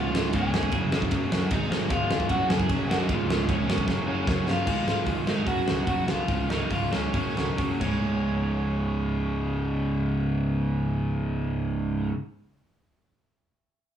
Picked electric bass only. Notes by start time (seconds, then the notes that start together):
Already playing: C#1
0.13 C#1
0.34 C#1
0.53 C#1
0.72 F#1
1.12 F#1
1.33 F#2
1.51 G#1
1.70 G#1
1.90 G#1
2.10 F1
2.30 F#1
2.48 F#1
2.69 F#1
2.88 F#1
3.09 C#1
3.28 C#1
3.49 C#1
3.68 G#1
3.87 F#1
4.27 F#1
4.46 G1
4.67 G#1
4.85 G#1
5.06 G#1
5.25 G#1
5.47 F#1
5.66 C#1
5.87 F#1
6.08 C2
6.28 C#1
6.48 C#1
6.71 C#1
6.92 C#1
7.14 F#1
7.35 C#1
7.58 F#1
7.80 C#1